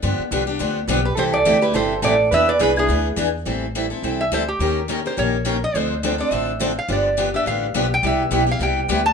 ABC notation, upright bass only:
X:1
M:4/4
L:1/8
Q:"Swing" 1/4=210
K:Am
V:1 name="Upright bass" clef=bass
G,, z C,,2 D,,2 B,,,2 | C,,2 D,,2 G,,,2 A,,,2 | E,,2 C,,2 D,,2 E,,2 | A,,,4 C,,2 D,,2 |
^D,,4 ^A,,,4 | D,,4 A,,,4 | G,,,4 A,,,2 B,,,2 | C,,2 B,,,2 C,,2 D,,2 |]